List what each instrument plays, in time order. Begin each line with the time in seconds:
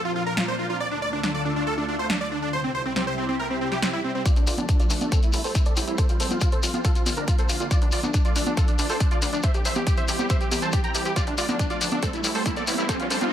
Already playing: analog synth pad A#2 F3 C4 D4 A#4
0.05 supersaw synth F4
0.16 supersaw synth F4
0.26 supersaw synth A#4
0.37 supersaw synth F4, snare
0.48 supersaw synth C5
0.59 supersaw synth F4
0.70 supersaw synth F4
0.80 analog synth pad D2 D3 A3 F4 A4, supersaw synth D5
0.91 supersaw synth D4
1.02 supersaw synth D5
1.13 supersaw synth D4
1.23 supersaw synth D4, snare
1.34 supersaw synth D5
1.45 supersaw synth D4
1.56 supersaw synth D4
1.67 supersaw synth A4
1.78 supersaw synth D4
1.88 supersaw synth D4
1.99 supersaw synth C5
2.10 supersaw synth D4, snare
2.21 supersaw synth D5
2.31 supersaw synth D4
2.42 supersaw synth D4
2.53 analog synth pad C2 C3 G3 E4 G4, supersaw synth C5
2.64 supersaw synth C4
2.75 supersaw synth C5
2.85 supersaw synth C4
2.96 supersaw synth C4, snare
3.07 supersaw synth C5
3.18 supersaw synth C4
3.29 supersaw synth C4
3.39 supersaw synth A#4
3.50 supersaw synth C4
3.61 supersaw synth C4
3.72 supersaw synth G4, snare
3.82 supersaw synth C4, snare
3.93 supersaw synth E4
4.04 supersaw synth C4
4.15 supersaw synth C4
4.26 analog synth pad F3 A3 D4, supersaw synth F4 D5, kick, closed hi-hat, shekere
4.36 analog synth bass D2, supersaw synth D4, closed hi-hat, shekere
4.47 analog synth bass D2, supersaw synth F4 D5, open hi-hat, shekere
4.58 analog synth bass D2, supersaw synth D4, closed hi-hat, high conga, shekere
4.69 supersaw synth D4, kick, closed hi-hat, shekere
4.80 supersaw synth F4 D5, closed hi-hat, shekere
4.90 analog synth bass D2, supersaw synth D4, open hi-hat, shekere
5.01 analog synth bass D1, supersaw synth D4, closed hi-hat, high conga, shekere
5.12 analog synth pad G3 C4, supersaw synth C4 A4, kick, closed hi-hat, shekere
5.22 supersaw synth E4, closed hi-hat, shekere
5.33 analog synth bass A1, supersaw synth E4, open hi-hat, shekere
5.44 analog synth bass A1, supersaw synth A4 C5, open hi-hat, shekere
5.55 supersaw synth E4, kick, closed hi-hat, shekere
5.65 supersaw synth A4 D5, closed hi-hat, shekere
5.77 analog synth bass A1, supersaw synth E4, open hi-hat, shekere
5.87 analog synth bass A1, supersaw synth E4, closed hi-hat, shekere
5.98 analog synth pad F3, supersaw synth A4 C5, kick, closed hi-hat, shekere
6.09 analog synth bass F1, supersaw synth F4, closed hi-hat, shekere
6.20 analog synth bass F1, supersaw synth A4 C5, open hi-hat, shekere
6.31 analog synth bass F1, supersaw synth F4, closed hi-hat, high conga, shekere
6.41 supersaw synth F4, kick, closed hi-hat, shekere
6.52 supersaw synth A4 C5, closed hi-hat, shekere
6.63 analog synth bass F1, supersaw synth F4, open hi-hat, shekere
6.74 analog synth bass F2, supersaw synth F4, closed hi-hat, high conga, shekere
6.84 analog synth pad D3 A#3, supersaw synth F4 A4, kick, closed hi-hat, shekere
6.95 supersaw synth F4, closed hi-hat, shekere
7.06 analog synth bass A#1, supersaw synth F4, open hi-hat, high conga, shekere
7.17 analog synth bass A#1, supersaw synth D4 A#4, closed hi-hat, shekere
7.28 supersaw synth F4, kick, closed hi-hat, shekere
7.39 supersaw synth A4 C5, closed hi-hat, shekere
7.49 analog synth bass A#1, supersaw synth F4, open hi-hat, shekere
7.60 analog synth bass A#1, supersaw synth F4, closed hi-hat, shekere
7.71 analog synth pad F3 A3 D4, supersaw synth F4 D5, kick, closed hi-hat, shekere
7.82 analog synth bass D2, supersaw synth D4, closed hi-hat, shekere
7.92 analog synth bass D2, supersaw synth F4 D5, open hi-hat, shekere
8.03 analog synth bass D2, supersaw synth D4, closed hi-hat, high conga, shekere
8.14 supersaw synth D4, kick, closed hi-hat, shekere
8.25 supersaw synth F4 D5, closed hi-hat, shekere
8.36 analog synth bass D2, supersaw synth D4, open hi-hat, shekere
8.46 supersaw synth D4, closed hi-hat, high conga, shekere
8.57 supersaw synth F4 A4, kick, closed hi-hat, shekere
8.68 supersaw synth D4, closed hi-hat, shekere
8.79 analog synth bass D2, supersaw synth D4, open hi-hat, shekere
8.90 analog synth bass D2, supersaw synth A4 C5, open hi-hat, shekere
9.00 supersaw synth D4, kick, closed hi-hat, shekere
9.11 supersaw synth F4 D5, closed hi-hat, shekere
9.22 analog synth bass D2, supersaw synth D4, open hi-hat, shekere
9.33 analog synth bass D2, supersaw synth D4, closed hi-hat, shekere
9.42 analog synth pad E3 G3 C4, supersaw synth C5 E5, kick, closed hi-hat, shekere
9.54 analog synth bass C2, supersaw synth G4, closed hi-hat, shekere
9.65 analog synth bass C2, supersaw synth C5 E5, open hi-hat, shekere
9.75 analog synth bass C2, supersaw synth G4, closed hi-hat, high conga, shekere
9.87 supersaw synth G4, kick, closed hi-hat, shekere
9.97 supersaw synth C5 E5, closed hi-hat, shekere
10.08 analog synth bass C2, supersaw synth G4, open hi-hat, shekere
10.19 analog synth bass G1, supersaw synth G4, high conga, shekere
10.30 supersaw synth C5 E5, kick, closed hi-hat, shekere
10.41 supersaw synth G4, closed hi-hat, shekere
10.51 analog synth bass C2, supersaw synth G4, open hi-hat, high conga, shekere
10.62 analog synth bass C2, supersaw synth C5 A5, closed hi-hat, shekere
10.72 supersaw synth G4, kick, closed hi-hat, shekere
10.84 supersaw synth G5 A#5, closed hi-hat, shekere
10.95 analog synth bass C2, supersaw synth G4, open hi-hat, shekere
11.05 analog synth bass C2, supersaw synth G4, closed hi-hat, shekere
11.16 analog synth pad F3 A3 D4, supersaw synth F4 D5, kick, closed hi-hat, riser, shekere
11.27 analog synth bass D2, supersaw synth D4, closed hi-hat, shekere
11.38 analog synth bass D2, supersaw synth F4 D5, open hi-hat, shekere
11.49 analog synth bass D2, supersaw synth D4, closed hi-hat, high conga, shekere
11.59 supersaw synth D4, kick, closed hi-hat, shekere
11.70 supersaw synth F4 D5, closed hi-hat, shekere
11.81 analog synth bass D2, supersaw synth D4, open hi-hat, shekere
11.91 supersaw synth D4, closed hi-hat, high conga, shekere
12.03 analog synth pad G3 C4, supersaw synth C4 A4, kick, closed hi-hat, shekere
12.13 supersaw synth E4, closed hi-hat, shekere
12.24 analog synth bass A1, supersaw synth E4, open hi-hat, shekere
12.35 analog synth bass A1, supersaw synth A4 C5, open hi-hat, shekere
12.46 supersaw synth E4, kick, closed hi-hat, shekere
12.56 supersaw synth A4 D5, closed hi-hat, shekere
12.67 analog synth bass A1, supersaw synth E4, open hi-hat, shekere
12.78 analog synth bass A1, supersaw synth E4, closed hi-hat, shekere
12.89 analog synth pad F3, supersaw synth A4 C5, kick, closed hi-hat, shekere
13.00 analog synth bass F1, supersaw synth F4, closed hi-hat, shekere
13.10 supersaw synth A4 C5, open hi-hat, shekere
13.21 supersaw synth F4, closed hi-hat, high conga, shekere